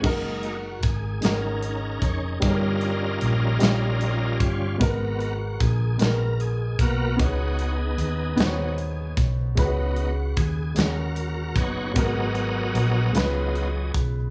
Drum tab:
CC |x-----|------|------|------|
HH |-xxxxx|xxxxxx|xxxxxx|xxxxxx|
SD |---o--|---o--|---o--|---o--|
BD |o-o--o|o----o|o-o--o|o----o|

CC |------|------|
HH |xxxxxx|xxxxxx|
SD |---o--|---o--|
BD |o-o--o|o----o|